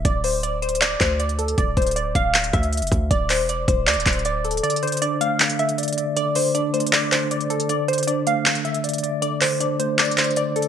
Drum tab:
HH |x-----------o-----------x-----------x---x---x---x-----------x-----------x-----x-----x-----x-----|x-----------x--x--x--x--x-----------x-----------x-----x-----x-----x-----x--x--x--x--x-----------|x-----------o-----------x-----------x-----------x---x---x---x---x---x---x-----------x---x---x---|x---x---x---x--x--x--x--x-----------x-----------x-----x-----x-----x-----x--x--x--x--x-----------|
CP |------------------------------------------------x-----------x-----------------------------------|------------------------------------------------x-----------------------------------------------|------------x-----------------------------------x-----------x-----------------------------------|------------------------------------------------x-----------------------------------------------|
BD |o-----------------------------------------------------------o-----------------------------------|o-----------o-----------------------o-----------------------o-----------------------o-----------|o-----------------------------------o-----------------------o-----------------------------------|------------------------------------------------------------------------------------------------|

HH |x-----------o-----------x-----------x---x---x---x-----------x-----------x-----x-----x-----x-----|x-----------x--x--x--x--x-----------x-----------x-----x-----x-----x-----x--x--x--x--x-----------|x-----------o-----------x-----------x-----------x---x---x---x---x---x---x-----------x---x-------|
CP |------------------------------------------------x-----------x-----------------------------------|------------------------------------------------x-----------------------------------------------|------------x-----------------------------------x-----------x-----------------------------------|
BD |------------------------------------------------------------------------------------------------|------------------------------------------------------------------------------------------------|------------------------------------------------------------------------------------------------|